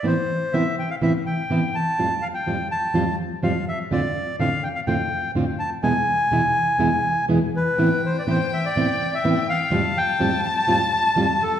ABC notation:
X:1
M:4/4
L:1/16
Q:1/4=125
K:Am
V:1 name="Violin"
z16 | z16 | z16 | z16 |
g16 | a16 |]
V:2 name="Bandoneon"
c4 e2 g f e2 g4 a2- | a2 f g3 a4 z2 f2 e2 | d4 f2 g f g4 z2 a2 | ^g12 z2 B2- |
B2 c d c2 e d4 e3 f2- | f2 g4 a a6- a A2 |]
V:3 name="Nylon-string guitar" clef=bass
[A,,E,B,CE]2 z2 [A,,E,B,CE]2 z2 [A,,E,B,CE]2 z2 [A,,E,B,CE]2 z2 | [F,,A,,F,G,CF]2 z2 [F,,A,,F,G,CF]2 z2 [F,,A,,F,G,CF]2 z2 [F,,A,,F,G,CF]2 z2 | [F,,A,,D,A,CF]2 z2 [F,,A,,D,A,CF]2 z2 [F,,A,,D,A,CF]2 z2 [F,,A,,D,A,CF]2 z2 | [E,,B,,E,^G,B,E]2 z2 [E,,B,,E,G,B,E]2 z2 [E,,B,,E,G,B,E]2 z2 [E,,B,,E,G,B,E]2 z2 |
[A,,E,B,CE]2 z2 [A,,E,B,CE]2 z2 [A,,E,B,CE]2 z2 [A,,E,B,CE]2 z2 | [F,,A,,F,G,CF]2 z2 [F,,A,,F,G,CF]2 z2 [F,,A,,F,G,CF]2 z2 [F,,A,,F,G,CF]2 z2 |]